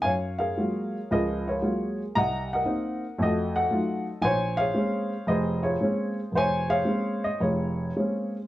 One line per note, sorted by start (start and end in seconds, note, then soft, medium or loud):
0.02 0.51 F#2 soft
0.02 1.08 C#5 medium
0.02 0.37 F5 medium
0.02 0.10 G#5 medium
0.39 1.12 G#4 medium
0.39 1.11 A#4 soft
0.39 1.13 F5 medium
0.58 0.96 F#3 soft
0.58 0.96 G#3 soft
0.58 0.96 A#3 soft
0.58 0.97 F4 medium
1.11 1.58 C#2 medium
1.11 1.58 F3 medium
1.11 2.15 G#4 medium
1.11 1.48 A#4 medium
1.11 1.49 D#5 medium
1.48 1.62 F4 soft
1.48 2.15 A#4 soft
1.48 1.97 C#5 medium
1.62 2.01 F#3 soft
1.62 2.01 G#3 soft
1.62 2.02 A#3 soft
1.62 2.02 F4 medium
2.15 2.62 C2 medium
2.15 2.53 D#5 medium
2.15 2.52 F#5 medium
2.15 2.49 A#5 medium
2.53 3.18 A#4 soft
2.53 3.18 D#5 soft
2.53 3.17 F#5 medium
2.65 3.03 A#3 soft
2.65 3.04 C4 soft
2.65 3.04 D#4 medium
3.18 3.65 F2 medium
3.18 3.64 A3 medium
3.22 4.21 F#4 medium
3.22 3.55 A4 medium
3.22 3.54 D#5 medium
3.56 4.20 A4 soft
3.56 4.20 D#5 medium
3.56 4.03 F#5 medium
3.71 4.08 F#3 soft
3.71 4.08 A3 soft
3.71 4.08 D#4 soft
3.71 4.08 F4 medium
4.22 4.68 A#1 medium
4.22 5.24 C5 medium
4.22 4.58 C#5 medium
4.22 4.59 G#5 loud
4.57 5.28 G#4 medium
4.57 5.60 C#5 medium
4.57 5.29 F5 medium
4.74 5.12 G#3 soft
4.74 5.12 A#3 soft
4.74 5.12 C4 soft
4.74 5.12 C#4 medium
5.27 5.74 F1 medium
5.27 5.62 G#4 medium
5.27 6.31 C5 medium
5.27 5.61 D#5 medium
5.63 6.66 F4 medium
5.63 6.66 G#4 medium
5.63 6.13 C#5 medium
5.81 6.19 G#3 soft
5.81 6.19 A#3 soft
5.81 6.19 C4 soft
5.81 6.19 C#4 medium
6.32 6.79 F1 medium
6.32 7.38 C5 medium
6.36 6.68 C#5 medium
6.36 6.69 G#5 loud
6.69 7.41 G#4 medium
6.69 7.40 C#5 medium
6.69 7.25 F5 medium
6.85 7.24 G#3 soft
6.85 7.25 A#3 soft
6.85 7.25 C4 soft
6.85 7.25 C#4 medium
7.24 7.42 D#5 medium
7.40 7.89 F1 medium
7.40 8.47 F4 soft
7.40 8.47 G#4 soft
7.40 8.30 C#5 medium
7.96 8.36 G#3 soft
7.96 8.36 A#3 soft
7.96 8.36 C4 soft
7.96 8.36 C#4 soft